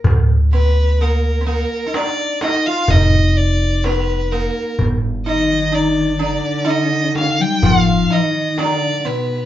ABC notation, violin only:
X:1
M:10/8
L:1/16
Q:1/4=63
K:none
V:1 name="Violin"
z2 B2 _B2 B2 d2 _e f e2 d2 =B2 _B2 | z2 _e2 d2 d2 e2 f g f2 e2 d2 B2 |]